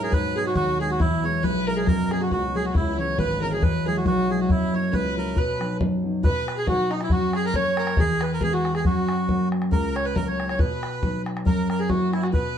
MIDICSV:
0, 0, Header, 1, 6, 480
1, 0, Start_track
1, 0, Tempo, 436047
1, 131, Time_signature, 2, 2, 24, 8
1, 13847, End_track
2, 0, Start_track
2, 0, Title_t, "Fiddle"
2, 0, Program_c, 0, 110
2, 0, Note_on_c, 0, 70, 78
2, 134, Note_on_c, 0, 71, 77
2, 150, Note_off_c, 0, 70, 0
2, 398, Note_on_c, 0, 68, 76
2, 414, Note_off_c, 0, 71, 0
2, 498, Note_off_c, 0, 68, 0
2, 505, Note_on_c, 0, 66, 73
2, 607, Note_off_c, 0, 66, 0
2, 617, Note_on_c, 0, 66, 80
2, 879, Note_on_c, 0, 68, 82
2, 896, Note_off_c, 0, 66, 0
2, 984, Note_off_c, 0, 68, 0
2, 990, Note_on_c, 0, 66, 66
2, 1099, Note_on_c, 0, 64, 66
2, 1115, Note_off_c, 0, 66, 0
2, 1355, Note_on_c, 0, 73, 81
2, 1371, Note_off_c, 0, 64, 0
2, 1578, Note_on_c, 0, 71, 100
2, 1595, Note_off_c, 0, 73, 0
2, 1840, Note_on_c, 0, 70, 81
2, 1857, Note_off_c, 0, 71, 0
2, 1943, Note_on_c, 0, 68, 61
2, 1960, Note_off_c, 0, 70, 0
2, 2048, Note_on_c, 0, 70, 73
2, 2064, Note_off_c, 0, 68, 0
2, 2320, Note_on_c, 0, 68, 75
2, 2336, Note_off_c, 0, 70, 0
2, 2433, Note_on_c, 0, 66, 73
2, 2449, Note_off_c, 0, 68, 0
2, 2539, Note_off_c, 0, 66, 0
2, 2546, Note_on_c, 0, 66, 80
2, 2663, Note_off_c, 0, 66, 0
2, 2811, Note_on_c, 0, 68, 70
2, 2919, Note_on_c, 0, 66, 66
2, 2936, Note_off_c, 0, 68, 0
2, 3036, Note_on_c, 0, 64, 69
2, 3053, Note_off_c, 0, 66, 0
2, 3290, Note_on_c, 0, 73, 85
2, 3306, Note_off_c, 0, 64, 0
2, 3506, Note_on_c, 0, 71, 100
2, 3522, Note_off_c, 0, 73, 0
2, 3758, Note_off_c, 0, 71, 0
2, 3764, Note_on_c, 0, 70, 82
2, 3867, Note_off_c, 0, 70, 0
2, 3882, Note_on_c, 0, 68, 62
2, 3996, Note_on_c, 0, 71, 80
2, 4012, Note_off_c, 0, 68, 0
2, 4247, Note_on_c, 0, 68, 69
2, 4263, Note_off_c, 0, 71, 0
2, 4371, Note_on_c, 0, 66, 70
2, 4387, Note_off_c, 0, 68, 0
2, 4471, Note_off_c, 0, 66, 0
2, 4478, Note_on_c, 0, 66, 80
2, 4817, Note_off_c, 0, 66, 0
2, 4850, Note_on_c, 0, 66, 53
2, 4961, Note_on_c, 0, 64, 73
2, 4977, Note_off_c, 0, 66, 0
2, 5219, Note_on_c, 0, 73, 76
2, 5236, Note_off_c, 0, 64, 0
2, 5433, Note_off_c, 0, 73, 0
2, 5438, Note_on_c, 0, 71, 88
2, 5879, Note_off_c, 0, 71, 0
2, 5911, Note_on_c, 0, 71, 68
2, 6356, Note_off_c, 0, 71, 0
2, 6872, Note_on_c, 0, 71, 78
2, 7214, Note_off_c, 0, 71, 0
2, 7234, Note_on_c, 0, 68, 74
2, 7343, Note_on_c, 0, 66, 90
2, 7359, Note_off_c, 0, 68, 0
2, 7602, Note_on_c, 0, 63, 73
2, 7618, Note_off_c, 0, 66, 0
2, 7714, Note_off_c, 0, 63, 0
2, 7725, Note_on_c, 0, 64, 68
2, 7834, Note_on_c, 0, 66, 83
2, 7851, Note_off_c, 0, 64, 0
2, 8091, Note_off_c, 0, 66, 0
2, 8102, Note_on_c, 0, 68, 79
2, 8185, Note_off_c, 0, 68, 0
2, 8185, Note_on_c, 0, 68, 61
2, 8204, Note_on_c, 0, 70, 91
2, 8220, Note_off_c, 0, 68, 0
2, 8319, Note_on_c, 0, 73, 99
2, 8335, Note_off_c, 0, 70, 0
2, 8565, Note_off_c, 0, 73, 0
2, 8571, Note_on_c, 0, 70, 77
2, 8793, Note_on_c, 0, 68, 78
2, 8809, Note_off_c, 0, 70, 0
2, 9043, Note_on_c, 0, 71, 75
2, 9059, Note_off_c, 0, 68, 0
2, 9261, Note_on_c, 0, 68, 88
2, 9278, Note_off_c, 0, 71, 0
2, 9391, Note_on_c, 0, 66, 76
2, 9407, Note_off_c, 0, 68, 0
2, 9627, Note_off_c, 0, 66, 0
2, 9634, Note_on_c, 0, 68, 64
2, 9729, Note_off_c, 0, 68, 0
2, 9735, Note_on_c, 0, 66, 66
2, 10434, Note_off_c, 0, 66, 0
2, 10702, Note_on_c, 0, 70, 73
2, 10960, Note_on_c, 0, 73, 82
2, 10977, Note_off_c, 0, 70, 0
2, 11065, Note_on_c, 0, 71, 81
2, 11082, Note_off_c, 0, 73, 0
2, 11175, Note_on_c, 0, 70, 76
2, 11191, Note_off_c, 0, 71, 0
2, 11306, Note_off_c, 0, 70, 0
2, 11314, Note_on_c, 0, 73, 78
2, 11534, Note_off_c, 0, 73, 0
2, 11546, Note_on_c, 0, 73, 66
2, 11660, Note_on_c, 0, 71, 74
2, 11676, Note_off_c, 0, 73, 0
2, 12397, Note_off_c, 0, 71, 0
2, 12617, Note_on_c, 0, 70, 65
2, 12857, Note_off_c, 0, 70, 0
2, 12877, Note_on_c, 0, 70, 71
2, 12984, Note_on_c, 0, 68, 68
2, 13001, Note_off_c, 0, 70, 0
2, 13090, Note_on_c, 0, 66, 80
2, 13106, Note_off_c, 0, 68, 0
2, 13352, Note_on_c, 0, 64, 82
2, 13369, Note_off_c, 0, 66, 0
2, 13451, Note_off_c, 0, 64, 0
2, 13458, Note_on_c, 0, 66, 74
2, 13561, Note_off_c, 0, 66, 0
2, 13572, Note_on_c, 0, 71, 80
2, 13847, Note_off_c, 0, 71, 0
2, 13847, End_track
3, 0, Start_track
3, 0, Title_t, "Melodica"
3, 0, Program_c, 1, 22
3, 35, Note_on_c, 1, 68, 75
3, 141, Note_off_c, 1, 68, 0
3, 148, Note_on_c, 1, 71, 101
3, 405, Note_on_c, 1, 68, 86
3, 409, Note_off_c, 1, 71, 0
3, 502, Note_off_c, 1, 68, 0
3, 517, Note_on_c, 1, 66, 85
3, 603, Note_off_c, 1, 66, 0
3, 620, Note_on_c, 1, 66, 105
3, 861, Note_off_c, 1, 66, 0
3, 893, Note_on_c, 1, 68, 84
3, 998, Note_off_c, 1, 68, 0
3, 1007, Note_on_c, 1, 66, 84
3, 1106, Note_on_c, 1, 64, 96
3, 1109, Note_off_c, 1, 66, 0
3, 1368, Note_on_c, 1, 73, 91
3, 1371, Note_off_c, 1, 64, 0
3, 1578, Note_on_c, 1, 71, 96
3, 1590, Note_off_c, 1, 73, 0
3, 1821, Note_off_c, 1, 71, 0
3, 1848, Note_on_c, 1, 70, 89
3, 1952, Note_on_c, 1, 68, 81
3, 1957, Note_off_c, 1, 70, 0
3, 2064, Note_off_c, 1, 68, 0
3, 2065, Note_on_c, 1, 70, 100
3, 2332, Note_off_c, 1, 70, 0
3, 2339, Note_on_c, 1, 68, 79
3, 2443, Note_off_c, 1, 68, 0
3, 2449, Note_on_c, 1, 66, 81
3, 2547, Note_off_c, 1, 66, 0
3, 2564, Note_on_c, 1, 66, 94
3, 2815, Note_on_c, 1, 68, 88
3, 2822, Note_off_c, 1, 66, 0
3, 2922, Note_off_c, 1, 68, 0
3, 2925, Note_on_c, 1, 66, 73
3, 3032, Note_off_c, 1, 66, 0
3, 3037, Note_on_c, 1, 64, 80
3, 3274, Note_off_c, 1, 64, 0
3, 3298, Note_on_c, 1, 73, 82
3, 3496, Note_off_c, 1, 73, 0
3, 3516, Note_on_c, 1, 71, 100
3, 3780, Note_off_c, 1, 71, 0
3, 3780, Note_on_c, 1, 70, 75
3, 3886, Note_off_c, 1, 70, 0
3, 3888, Note_on_c, 1, 68, 67
3, 3994, Note_on_c, 1, 71, 96
3, 3995, Note_off_c, 1, 68, 0
3, 4259, Note_off_c, 1, 71, 0
3, 4260, Note_on_c, 1, 68, 84
3, 4366, Note_off_c, 1, 68, 0
3, 4370, Note_on_c, 1, 66, 78
3, 4462, Note_off_c, 1, 66, 0
3, 4479, Note_on_c, 1, 66, 100
3, 4738, Note_on_c, 1, 68, 75
3, 4741, Note_off_c, 1, 66, 0
3, 4846, Note_off_c, 1, 68, 0
3, 4854, Note_on_c, 1, 66, 68
3, 4958, Note_off_c, 1, 66, 0
3, 4964, Note_on_c, 1, 64, 91
3, 5224, Note_off_c, 1, 64, 0
3, 5227, Note_on_c, 1, 73, 78
3, 5434, Note_on_c, 1, 71, 102
3, 5443, Note_off_c, 1, 73, 0
3, 5674, Note_off_c, 1, 71, 0
3, 5705, Note_on_c, 1, 70, 76
3, 5909, Note_on_c, 1, 71, 82
3, 5922, Note_off_c, 1, 70, 0
3, 6355, Note_off_c, 1, 71, 0
3, 6870, Note_on_c, 1, 71, 102
3, 7118, Note_off_c, 1, 71, 0
3, 7135, Note_on_c, 1, 71, 81
3, 7243, Note_on_c, 1, 68, 77
3, 7244, Note_off_c, 1, 71, 0
3, 7342, Note_off_c, 1, 68, 0
3, 7362, Note_on_c, 1, 66, 94
3, 7614, Note_on_c, 1, 63, 81
3, 7623, Note_off_c, 1, 66, 0
3, 7724, Note_off_c, 1, 63, 0
3, 7739, Note_on_c, 1, 64, 80
3, 7831, Note_off_c, 1, 64, 0
3, 7842, Note_on_c, 1, 66, 94
3, 8099, Note_on_c, 1, 68, 87
3, 8102, Note_off_c, 1, 66, 0
3, 8205, Note_off_c, 1, 68, 0
3, 8215, Note_on_c, 1, 70, 93
3, 8318, Note_off_c, 1, 70, 0
3, 8318, Note_on_c, 1, 73, 98
3, 8801, Note_on_c, 1, 68, 105
3, 8805, Note_off_c, 1, 73, 0
3, 9061, Note_off_c, 1, 68, 0
3, 9061, Note_on_c, 1, 71, 96
3, 9155, Note_off_c, 1, 71, 0
3, 9174, Note_on_c, 1, 70, 94
3, 9277, Note_off_c, 1, 70, 0
3, 9281, Note_on_c, 1, 68, 96
3, 9394, Note_off_c, 1, 68, 0
3, 9400, Note_on_c, 1, 66, 84
3, 9620, Note_off_c, 1, 66, 0
3, 9640, Note_on_c, 1, 68, 77
3, 9739, Note_off_c, 1, 68, 0
3, 9754, Note_on_c, 1, 66, 89
3, 10443, Note_off_c, 1, 66, 0
3, 10698, Note_on_c, 1, 70, 90
3, 10958, Note_on_c, 1, 73, 91
3, 10966, Note_off_c, 1, 70, 0
3, 11072, Note_off_c, 1, 73, 0
3, 11072, Note_on_c, 1, 71, 92
3, 11183, Note_off_c, 1, 71, 0
3, 11185, Note_on_c, 1, 70, 94
3, 11311, Note_on_c, 1, 73, 79
3, 11316, Note_off_c, 1, 70, 0
3, 11538, Note_off_c, 1, 73, 0
3, 11555, Note_on_c, 1, 73, 87
3, 11662, Note_on_c, 1, 71, 85
3, 11663, Note_off_c, 1, 73, 0
3, 12353, Note_off_c, 1, 71, 0
3, 12614, Note_on_c, 1, 70, 86
3, 12860, Note_off_c, 1, 70, 0
3, 12876, Note_on_c, 1, 70, 86
3, 12987, Note_off_c, 1, 70, 0
3, 12987, Note_on_c, 1, 68, 78
3, 13091, Note_on_c, 1, 66, 84
3, 13097, Note_off_c, 1, 68, 0
3, 13333, Note_off_c, 1, 66, 0
3, 13359, Note_on_c, 1, 64, 77
3, 13459, Note_on_c, 1, 66, 78
3, 13468, Note_off_c, 1, 64, 0
3, 13509, Note_off_c, 1, 66, 0
3, 13574, Note_on_c, 1, 71, 92
3, 13847, Note_off_c, 1, 71, 0
3, 13847, End_track
4, 0, Start_track
4, 0, Title_t, "Grand piano"
4, 0, Program_c, 2, 0
4, 0, Note_on_c, 2, 44, 66
4, 114, Note_off_c, 2, 44, 0
4, 130, Note_on_c, 2, 44, 70
4, 387, Note_on_c, 2, 56, 38
4, 393, Note_on_c, 2, 59, 41
4, 395, Note_on_c, 2, 63, 46
4, 599, Note_off_c, 2, 44, 0
4, 606, Note_on_c, 2, 39, 66
4, 775, Note_off_c, 2, 56, 0
4, 779, Note_off_c, 2, 59, 0
4, 780, Note_off_c, 2, 63, 0
4, 863, Note_on_c, 2, 56, 43
4, 870, Note_on_c, 2, 59, 37
4, 874, Note_on_c, 2, 63, 53
4, 1044, Note_off_c, 2, 56, 0
4, 1048, Note_off_c, 2, 59, 0
4, 1051, Note_off_c, 2, 63, 0
4, 1078, Note_off_c, 2, 39, 0
4, 1097, Note_on_c, 2, 40, 72
4, 1355, Note_on_c, 2, 56, 42
4, 1361, Note_on_c, 2, 59, 45
4, 1364, Note_on_c, 2, 64, 50
4, 1564, Note_off_c, 2, 40, 0
4, 1580, Note_on_c, 2, 35, 69
4, 1742, Note_off_c, 2, 56, 0
4, 1745, Note_off_c, 2, 59, 0
4, 1747, Note_off_c, 2, 64, 0
4, 1835, Note_on_c, 2, 56, 46
4, 1836, Note_on_c, 2, 59, 39
4, 1845, Note_on_c, 2, 64, 49
4, 2013, Note_off_c, 2, 56, 0
4, 2013, Note_off_c, 2, 59, 0
4, 2019, Note_off_c, 2, 64, 0
4, 2046, Note_off_c, 2, 35, 0
4, 2056, Note_on_c, 2, 42, 76
4, 2314, Note_on_c, 2, 54, 41
4, 2319, Note_on_c, 2, 58, 36
4, 2324, Note_on_c, 2, 61, 47
4, 2525, Note_off_c, 2, 42, 0
4, 2535, Note_on_c, 2, 37, 56
4, 2702, Note_off_c, 2, 54, 0
4, 2705, Note_off_c, 2, 58, 0
4, 2708, Note_off_c, 2, 61, 0
4, 2792, Note_on_c, 2, 54, 41
4, 2800, Note_on_c, 2, 58, 34
4, 2800, Note_on_c, 2, 61, 49
4, 2972, Note_off_c, 2, 54, 0
4, 2977, Note_off_c, 2, 58, 0
4, 2977, Note_off_c, 2, 61, 0
4, 3000, Note_off_c, 2, 37, 0
4, 3017, Note_on_c, 2, 37, 64
4, 3273, Note_on_c, 2, 52, 44
4, 3276, Note_on_c, 2, 56, 34
4, 3284, Note_on_c, 2, 61, 49
4, 3487, Note_off_c, 2, 37, 0
4, 3492, Note_on_c, 2, 32, 63
4, 3662, Note_off_c, 2, 52, 0
4, 3664, Note_off_c, 2, 56, 0
4, 3669, Note_off_c, 2, 61, 0
4, 3749, Note_on_c, 2, 52, 43
4, 3754, Note_on_c, 2, 56, 42
4, 3759, Note_on_c, 2, 61, 55
4, 3931, Note_off_c, 2, 52, 0
4, 3935, Note_off_c, 2, 56, 0
4, 3937, Note_off_c, 2, 61, 0
4, 3965, Note_off_c, 2, 32, 0
4, 3981, Note_on_c, 2, 40, 67
4, 4244, Note_on_c, 2, 54, 39
4, 4249, Note_on_c, 2, 56, 37
4, 4253, Note_on_c, 2, 64, 47
4, 4450, Note_off_c, 2, 40, 0
4, 4460, Note_on_c, 2, 35, 68
4, 4629, Note_off_c, 2, 54, 0
4, 4633, Note_off_c, 2, 56, 0
4, 4635, Note_off_c, 2, 64, 0
4, 4715, Note_on_c, 2, 54, 48
4, 4721, Note_on_c, 2, 56, 36
4, 4727, Note_on_c, 2, 64, 51
4, 4895, Note_off_c, 2, 54, 0
4, 4899, Note_off_c, 2, 56, 0
4, 4903, Note_off_c, 2, 64, 0
4, 4929, Note_off_c, 2, 35, 0
4, 4940, Note_on_c, 2, 42, 68
4, 5196, Note_on_c, 2, 54, 40
4, 5200, Note_on_c, 2, 58, 38
4, 5210, Note_on_c, 2, 64, 46
4, 5409, Note_off_c, 2, 42, 0
4, 5421, Note_on_c, 2, 37, 60
4, 5585, Note_off_c, 2, 54, 0
4, 5588, Note_off_c, 2, 58, 0
4, 5593, Note_off_c, 2, 64, 0
4, 5677, Note_on_c, 2, 54, 49
4, 5679, Note_on_c, 2, 58, 41
4, 5683, Note_on_c, 2, 64, 47
4, 5857, Note_off_c, 2, 54, 0
4, 5858, Note_off_c, 2, 58, 0
4, 5861, Note_off_c, 2, 64, 0
4, 5890, Note_off_c, 2, 37, 0
4, 5899, Note_on_c, 2, 47, 73
4, 6153, Note_on_c, 2, 54, 41
4, 6158, Note_on_c, 2, 59, 38
4, 6164, Note_on_c, 2, 63, 46
4, 6369, Note_off_c, 2, 47, 0
4, 6385, Note_on_c, 2, 42, 61
4, 6543, Note_off_c, 2, 54, 0
4, 6546, Note_off_c, 2, 59, 0
4, 6550, Note_off_c, 2, 63, 0
4, 6643, Note_on_c, 2, 54, 42
4, 6647, Note_on_c, 2, 59, 38
4, 6648, Note_on_c, 2, 63, 49
4, 6821, Note_off_c, 2, 54, 0
4, 6823, Note_off_c, 2, 59, 0
4, 6823, Note_off_c, 2, 63, 0
4, 6851, Note_off_c, 2, 42, 0
4, 6859, Note_on_c, 2, 47, 70
4, 7335, Note_on_c, 2, 54, 41
4, 7340, Note_on_c, 2, 59, 43
4, 7343, Note_on_c, 2, 63, 44
4, 7793, Note_off_c, 2, 47, 0
4, 7806, Note_off_c, 2, 54, 0
4, 7808, Note_off_c, 2, 59, 0
4, 7810, Note_off_c, 2, 63, 0
4, 7819, Note_on_c, 2, 42, 68
4, 8293, Note_on_c, 2, 54, 44
4, 8299, Note_on_c, 2, 58, 44
4, 8304, Note_on_c, 2, 61, 58
4, 8752, Note_off_c, 2, 42, 0
4, 8764, Note_off_c, 2, 54, 0
4, 8767, Note_off_c, 2, 58, 0
4, 8770, Note_off_c, 2, 61, 0
4, 8780, Note_on_c, 2, 40, 72
4, 9256, Note_on_c, 2, 52, 47
4, 9260, Note_on_c, 2, 56, 46
4, 9265, Note_on_c, 2, 59, 50
4, 9711, Note_off_c, 2, 40, 0
4, 9724, Note_off_c, 2, 52, 0
4, 9726, Note_off_c, 2, 56, 0
4, 9729, Note_off_c, 2, 59, 0
4, 9739, Note_on_c, 2, 42, 69
4, 10215, Note_on_c, 2, 54, 49
4, 10221, Note_on_c, 2, 58, 40
4, 10225, Note_on_c, 2, 61, 45
4, 10669, Note_off_c, 2, 42, 0
4, 10682, Note_off_c, 2, 54, 0
4, 10685, Note_off_c, 2, 58, 0
4, 10687, Note_off_c, 2, 61, 0
4, 10695, Note_on_c, 2, 37, 73
4, 11166, Note_on_c, 2, 54, 44
4, 11175, Note_on_c, 2, 58, 42
4, 11178, Note_on_c, 2, 61, 45
4, 11626, Note_off_c, 2, 37, 0
4, 11636, Note_off_c, 2, 54, 0
4, 11641, Note_off_c, 2, 58, 0
4, 11642, Note_off_c, 2, 61, 0
4, 11656, Note_on_c, 2, 47, 71
4, 12128, Note_on_c, 2, 54, 43
4, 12131, Note_on_c, 2, 59, 41
4, 12135, Note_on_c, 2, 63, 43
4, 12585, Note_off_c, 2, 47, 0
4, 12596, Note_off_c, 2, 54, 0
4, 12597, Note_off_c, 2, 59, 0
4, 12599, Note_off_c, 2, 63, 0
4, 12611, Note_on_c, 2, 42, 75
4, 13093, Note_on_c, 2, 54, 49
4, 13098, Note_on_c, 2, 58, 42
4, 13099, Note_on_c, 2, 64, 43
4, 13541, Note_off_c, 2, 42, 0
4, 13557, Note_off_c, 2, 54, 0
4, 13559, Note_off_c, 2, 58, 0
4, 13560, Note_off_c, 2, 64, 0
4, 13568, Note_on_c, 2, 47, 72
4, 13847, Note_off_c, 2, 47, 0
4, 13847, End_track
5, 0, Start_track
5, 0, Title_t, "Harmonium"
5, 0, Program_c, 3, 20
5, 0, Note_on_c, 3, 47, 72
5, 0, Note_on_c, 3, 54, 67
5, 3003, Note_off_c, 3, 54, 0
5, 3013, Note_off_c, 3, 47, 0
5, 3020, Note_on_c, 3, 54, 61
5, 3029, Note_on_c, 3, 47, 63
5, 6918, Note_off_c, 3, 54, 0
5, 6922, Note_off_c, 3, 47, 0
5, 13847, End_track
6, 0, Start_track
6, 0, Title_t, "Bodhran"
6, 139, Note_on_c, 9, 64, 68
6, 249, Note_off_c, 9, 64, 0
6, 612, Note_on_c, 9, 64, 81
6, 722, Note_off_c, 9, 64, 0
6, 1103, Note_on_c, 9, 64, 84
6, 1213, Note_off_c, 9, 64, 0
6, 1586, Note_on_c, 9, 64, 63
6, 1696, Note_off_c, 9, 64, 0
6, 2065, Note_on_c, 9, 64, 72
6, 2175, Note_off_c, 9, 64, 0
6, 2325, Note_on_c, 9, 64, 50
6, 2435, Note_off_c, 9, 64, 0
6, 2548, Note_on_c, 9, 64, 62
6, 2658, Note_off_c, 9, 64, 0
6, 3028, Note_on_c, 9, 64, 78
6, 3138, Note_off_c, 9, 64, 0
6, 3508, Note_on_c, 9, 64, 75
6, 3619, Note_off_c, 9, 64, 0
6, 3989, Note_on_c, 9, 64, 85
6, 4099, Note_off_c, 9, 64, 0
6, 4466, Note_on_c, 9, 64, 69
6, 4576, Note_off_c, 9, 64, 0
6, 4951, Note_on_c, 9, 64, 86
6, 5061, Note_off_c, 9, 64, 0
6, 5433, Note_on_c, 9, 64, 73
6, 5543, Note_off_c, 9, 64, 0
6, 5907, Note_on_c, 9, 64, 63
6, 6017, Note_off_c, 9, 64, 0
6, 6174, Note_on_c, 9, 64, 54
6, 6284, Note_off_c, 9, 64, 0
6, 6391, Note_on_c, 9, 64, 80
6, 6501, Note_off_c, 9, 64, 0
6, 6870, Note_on_c, 9, 64, 90
6, 6980, Note_off_c, 9, 64, 0
6, 7135, Note_on_c, 9, 64, 58
6, 7245, Note_off_c, 9, 64, 0
6, 7346, Note_on_c, 9, 64, 80
6, 7456, Note_off_c, 9, 64, 0
6, 7605, Note_on_c, 9, 64, 51
6, 7713, Note_off_c, 9, 64, 0
6, 7713, Note_on_c, 9, 64, 53
6, 7814, Note_off_c, 9, 64, 0
6, 7814, Note_on_c, 9, 64, 77
6, 7924, Note_off_c, 9, 64, 0
6, 8073, Note_on_c, 9, 64, 57
6, 8183, Note_off_c, 9, 64, 0
6, 8299, Note_on_c, 9, 64, 76
6, 8409, Note_off_c, 9, 64, 0
6, 8555, Note_on_c, 9, 64, 67
6, 8664, Note_off_c, 9, 64, 0
6, 8664, Note_on_c, 9, 64, 67
6, 8774, Note_off_c, 9, 64, 0
6, 8774, Note_on_c, 9, 64, 96
6, 8884, Note_off_c, 9, 64, 0
6, 9034, Note_on_c, 9, 64, 73
6, 9144, Note_off_c, 9, 64, 0
6, 9257, Note_on_c, 9, 64, 79
6, 9367, Note_off_c, 9, 64, 0
6, 9523, Note_on_c, 9, 64, 55
6, 9630, Note_off_c, 9, 64, 0
6, 9630, Note_on_c, 9, 64, 49
6, 9740, Note_off_c, 9, 64, 0
6, 9741, Note_on_c, 9, 64, 68
6, 9851, Note_off_c, 9, 64, 0
6, 10002, Note_on_c, 9, 64, 57
6, 10112, Note_off_c, 9, 64, 0
6, 10223, Note_on_c, 9, 64, 66
6, 10334, Note_off_c, 9, 64, 0
6, 10481, Note_on_c, 9, 64, 52
6, 10587, Note_off_c, 9, 64, 0
6, 10587, Note_on_c, 9, 64, 52
6, 10697, Note_off_c, 9, 64, 0
6, 10700, Note_on_c, 9, 64, 67
6, 10810, Note_off_c, 9, 64, 0
6, 10966, Note_on_c, 9, 64, 51
6, 11077, Note_off_c, 9, 64, 0
6, 11185, Note_on_c, 9, 64, 77
6, 11295, Note_off_c, 9, 64, 0
6, 11445, Note_on_c, 9, 64, 52
6, 11552, Note_off_c, 9, 64, 0
6, 11552, Note_on_c, 9, 64, 53
6, 11659, Note_off_c, 9, 64, 0
6, 11659, Note_on_c, 9, 64, 79
6, 11769, Note_off_c, 9, 64, 0
6, 11921, Note_on_c, 9, 64, 60
6, 12032, Note_off_c, 9, 64, 0
6, 12139, Note_on_c, 9, 64, 81
6, 12249, Note_off_c, 9, 64, 0
6, 12399, Note_on_c, 9, 64, 58
6, 12509, Note_off_c, 9, 64, 0
6, 12513, Note_on_c, 9, 64, 58
6, 12619, Note_off_c, 9, 64, 0
6, 12619, Note_on_c, 9, 64, 71
6, 12729, Note_off_c, 9, 64, 0
6, 12877, Note_on_c, 9, 64, 51
6, 12987, Note_off_c, 9, 64, 0
6, 13095, Note_on_c, 9, 64, 70
6, 13206, Note_off_c, 9, 64, 0
6, 13358, Note_on_c, 9, 64, 55
6, 13468, Note_off_c, 9, 64, 0
6, 13468, Note_on_c, 9, 64, 47
6, 13578, Note_off_c, 9, 64, 0
6, 13581, Note_on_c, 9, 64, 63
6, 13691, Note_off_c, 9, 64, 0
6, 13847, End_track
0, 0, End_of_file